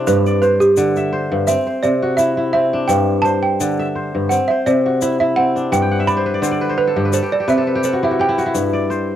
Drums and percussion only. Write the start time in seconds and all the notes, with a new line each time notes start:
0.07 shaker
0.26 shaker
0.42 shaker
0.61 shaker
0.77 shaker
0.96 shaker
1.47 shaker
1.83 shaker
2.18 shaker
2.89 shaker
3.25 shaker
3.60 shaker
4.31 shaker
4.67 shaker
5.02 shaker
5.56 shaker
5.73 shaker
6.08 shaker
6.43 shaker
7.13 shaker
7.49 shaker
7.84 shaker
8.39 shaker
8.55 shaker
8.91 shaker